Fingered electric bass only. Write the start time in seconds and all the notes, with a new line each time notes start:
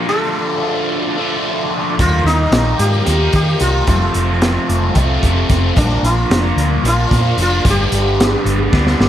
1.99 D#2
2.24 D#2
2.51 A#1
2.79 G#2
3.07 D#2
3.34 D#3
3.60 C2
3.87 F1
4.15 F1
4.69 F1
4.96 C2
5.22 F1
5.49 F1
5.77 A#1
6.03 A#1
6.30 F1
6.56 D2
6.83 A#1
7.11 A#2
7.37 F1
7.65 G1
7.92 G1
8.45 G1
8.73 D2
9.00 G1